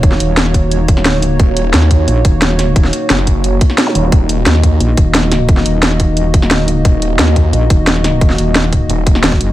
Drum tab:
HH |x-x-x-x-x-x-x-x-|x-x-x-x-x-x-x-x-|x-x-x-x-x-x-x-x-|x-x-x-x-x-x-x-x-|
SD |-o--oo-----oo---|----oo------ooo-|-o--oo-----oo---|----oo------ooo-|
BD |o-----o---o-----|o-----o---o-----|o-----o---o-----|o-----o---o-----|

HH |x-x-x-x-x-x-x-x-|x-x-x-x-x-x-x-x-|x-x-x-x-x-x-x-x-|
SD |-o--oo-----oo---|----oo------ooo-|-o--oo-----oo---|
BD |o-----o---o-----|o-----o---o-----|o-----o---o--o--|